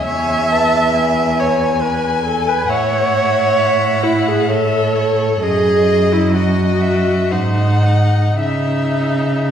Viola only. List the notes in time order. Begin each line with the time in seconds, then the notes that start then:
0.05 E5
1.40 C#5
1.82 B4
2.25 A4
2.49 B4
2.70 C#5
4.03 E4
4.28 G#4
4.50 A4
5.42 G#4
6.12 E4
6.34 F#4
7.32 D#4
8.40 D#4